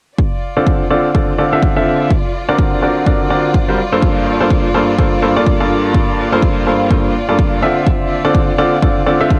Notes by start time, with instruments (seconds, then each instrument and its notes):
0.18 violin section F4 D5, kick
0.44 ambient pad D5
0.57 upright piano D3 C4 F4 A4 D5
0.62 ambient pad C5
0.67 kick
0.90 upright piano D3 C4 F4 A4 D5
1.14 upright piano D3 C4 F4 A4 D5, kick
1.38 upright piano D3 C4 F4 A4 D5
1.53 upright piano D3 C4 F4 A4 E5
1.62 kick
1.77 upright piano D3 C4 F4 A4 E5
2.10 ambient pad F#3, kick
2.49 upright piano D3 C4 F#4 A#4 D5
2.58 kick
2.82 upright piano D3 C4 F#4 A#4 D5
2.87 ambient pad A#5
3.06 upright piano D3 C4 F#4 A#4 D5, kick
3.30 upright piano D3 C4 F#4 A#4 D5
3.55 kick
3.69 upright piano G3 C4 F#4 A#4 C5
3.78 ambient pad F4
3.93 upright piano G2 A#3 F4 A4 C5
4.03 kick
4.09 ambient pad A#3
4.32 ambient pad A5
4.41 upright piano G2 A#3 F4 A4 C5
4.51 kick
4.74 upright piano G2 A#3 F4 A4 C5
4.95 upright piano G2 A#3 F4 A4 C5, ambient pad G5, kick
5.22 upright piano G2 A#3 F4 A4 C5
5.37 upright piano G2 A#3 F4 A4 D5
5.47 kick
5.60 upright piano G2 A#3 F4 A4 D5
5.95 kick
6.33 upright piano G2 A#3 F4 A4 C5
6.43 kick
6.66 upright piano G2 A#3 F4 A4 C5
6.90 upright piano G2 A#3 F4 A4 C5, kick
7.29 upright piano G2 A#3 F4 A4 D5
7.38 kick
7.62 upright piano D3 C4 F4 A4 E5
7.86 kick
8.25 upright piano D3 C4 F4 A4 D5
8.34 ambient pad D5, kick
8.58 upright piano D3 C4 F4 A4 D5
8.82 upright piano D3 C4 F4 A4 D5, kick
9.06 upright piano D3 C4 F4 A4 D5
9.20 upright piano D3 C4 F4 A4 E5
9.30 kick